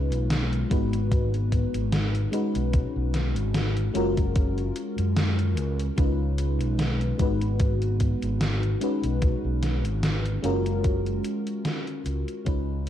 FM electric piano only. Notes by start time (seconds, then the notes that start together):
Already playing: G#3 C#4 D#4 F4 B4
0.70 G#3 B3 D#4 F#4 B4
2.31 G#3 C#4 D#4 F#4 B4
3.94 G#3 C#4 F4 F#4 A#4
5.96 G#3 C#4 D#4 F4 B4
7.18 G#3 B3 D#4 F#4 B4
8.80 G#3 C#4 D#4 F#4 B4
10.43 G#3 C#4 F4 F#4 A#4
12.45 G#3 C#4 D#4 F4 B4